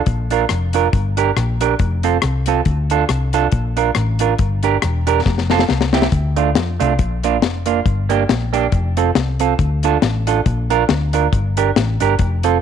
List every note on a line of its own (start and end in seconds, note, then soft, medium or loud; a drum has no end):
0.06 0.44 A#1 medium
0.06 kick loud
0.06 closed hi-hat medium
0.31 0.44 D4 medium
0.31 0.44 F4 medium
0.31 0.44 A#4 medium
0.31 closed hi-hat medium
0.49 0.87 F1 medium
0.49 cross-stick loud
0.49 closed hi-hat medium
0.73 0.87 D4 medium
0.73 0.87 F4 medium
0.73 0.87 A#4 medium
0.73 closed hi-hat medium
0.93 1.30 G1 loud
0.93 kick loud
0.93 closed hi-hat medium
1.17 1.30 D4 medium
1.17 1.30 G4 medium
1.17 1.30 A#4 medium
1.17 closed hi-hat medium
1.37 1.73 A#1 medium
1.37 cross-stick loud
1.37 closed hi-hat medium
1.61 1.73 D4 medium
1.61 1.74 G4 medium
1.61 1.74 A#4 medium
1.61 closed hi-hat medium
1.79 2.17 F1 loud
1.79 kick loud
1.79 closed hi-hat medium
2.03 2.16 C4 medium
2.03 2.17 F4 medium
2.03 2.17 A4 medium
2.03 closed hi-hat medium
2.22 2.60 C2 medium
2.22 muted clean electric guitar stroke soft
2.22 cross-stick loud
2.22 closed hi-hat medium
2.46 2.60 C4 medium
2.46 2.60 F4 medium
2.46 2.60 A4 medium
2.46 closed hi-hat medium
2.65 3.03 D2 medium
2.65 kick loud
2.65 closed hi-hat medium
2.90 3.03 D4 medium
2.90 3.04 F4 medium
2.90 3.03 A4 medium
2.90 closed hi-hat medium
3.09 3.46 C2 medium
3.09 cross-stick loud
3.09 closed hi-hat medium
3.33 3.46 D4 medium
3.33 3.46 F4 medium
3.33 3.46 A4 medium
3.33 closed hi-hat medium
3.52 3.89 A#1 loud
3.52 kick loud
3.52 closed hi-hat medium
3.77 3.89 D4 medium
3.77 3.90 F4 medium
3.77 3.90 A#4 medium
3.77 closed hi-hat medium
3.95 4.33 A1 medium
3.95 cross-stick loud
3.95 closed hi-hat medium
4.19 4.33 D4 medium
4.19 4.33 F4 medium
4.19 4.33 A#4 medium
4.19 closed hi-hat medium
4.39 4.76 G1 loud
4.39 kick loud
4.39 closed hi-hat medium
4.63 4.76 D4 medium
4.63 4.76 G4 medium
4.63 4.76 A#4 medium
4.63 closed hi-hat medium
4.82 5.20 E1 loud
4.82 cross-stick loud
4.82 closed hi-hat medium
5.07 5.19 D4 medium
5.07 5.20 G4 medium
5.07 5.20 A#4 medium
5.07 closed hi-hat medium
5.26 5.63 F1 loud
5.26 kick loud
5.26 snare medium
5.38 snare medium
5.50 5.63 C4 medium
5.50 5.63 F4 medium
5.50 5.63 A4 medium
5.50 snare medium
5.59 snare medium
5.69 6.07 C2 loud
5.69 muted clean electric guitar stroke soft
5.69 snare medium
5.81 snare medium
5.93 6.06 C4 medium
5.93 6.06 E4 medium
5.93 6.06 G4 medium
5.93 snare medium
6.02 snare loud
6.12 6.57 D2 medium
6.12 kick loud
6.12 closed hi-hat medium
6.36 6.49 A3 medium
6.36 6.49 D4 medium
6.36 6.49 F4 medium
6.36 closed hi-hat medium
6.55 6.77 F2 loud
6.55 snare loud
6.55 closed hi-hat medium
6.80 6.97 C2 medium
6.80 6.92 A3 medium
6.80 6.93 D4 medium
6.80 6.93 F4 medium
6.80 closed hi-hat medium
6.99 7.43 A#1 loud
6.99 kick loud
6.99 closed hi-hat medium
7.23 7.36 A#3 medium
7.23 7.36 D4 medium
7.23 7.37 F4 medium
7.23 closed hi-hat medium
7.42 7.80 F1 medium
7.42 snare loud
7.42 closed hi-hat medium
7.66 7.79 A#3 medium
7.66 7.79 D4 medium
7.66 7.79 F4 medium
7.66 closed hi-hat medium
7.86 8.23 G1 medium
7.86 kick loud
7.86 closed hi-hat medium
8.09 8.22 A#3 medium
8.09 8.23 D4 medium
8.09 8.23 G4 medium
8.09 closed hi-hat medium
8.29 8.66 A#1 medium
8.29 snare loud
8.29 closed hi-hat medium
8.53 8.66 A#3 medium
8.53 8.66 D4 loud
8.53 8.66 G4 loud
8.53 closed hi-hat medium
8.72 9.09 F1 loud
8.72 kick loud
8.72 closed hi-hat medium
8.97 9.10 C4 medium
8.97 9.10 F4 medium
8.97 9.10 A4 medium
8.97 closed hi-hat medium
9.15 9.53 C2 medium
9.15 muted clean electric guitar stroke soft
9.15 snare loud
9.15 closed hi-hat medium
9.40 9.53 C4 medium
9.40 9.53 F4 medium
9.40 9.53 A4 medium
9.40 closed hi-hat medium
9.59 9.96 D2 medium
9.59 kick loud
9.59 closed hi-hat medium
9.83 9.97 D4 medium
9.83 9.97 F4 medium
9.83 9.97 A4 medium
9.83 closed hi-hat medium
10.02 10.39 A1 loud
10.02 snare loud
10.02 closed hi-hat medium
10.27 10.40 D4 medium
10.27 10.40 F4 medium
10.27 10.40 A4 medium
10.27 closed hi-hat medium
10.46 10.83 A#1 loud
10.46 kick loud
10.46 closed hi-hat medium
10.70 10.83 D4 medium
10.70 10.83 F4 medium
10.70 10.83 A#4 medium
10.70 closed hi-hat medium
10.89 11.27 D2 loud
10.89 snare loud
10.89 closed hi-hat medium
11.13 11.26 D4 medium
11.13 11.26 F4 medium
11.13 11.27 A#4 medium
11.13 closed hi-hat medium
11.33 11.70 G1 loud
11.33 kick loud
11.33 closed hi-hat medium
11.57 11.70 D4 medium
11.57 11.70 G4 medium
11.57 11.70 A#4 medium
11.57 closed hi-hat medium
11.76 11.97 A1 medium
11.76 snare loud
11.76 closed hi-hat medium
12.00 12.17 G1 medium
12.00 12.13 D4 medium
12.00 12.14 G4 medium
12.00 12.14 A#4 medium
12.00 closed hi-hat medium
12.19 12.57 F1 loud
12.19 muted clean electric guitar stroke soft
12.19 kick loud
12.19 closed hi-hat medium
12.43 12.57 C4 medium
12.43 12.57 F4 medium
12.43 12.57 A4 medium
12.43 closed hi-hat medium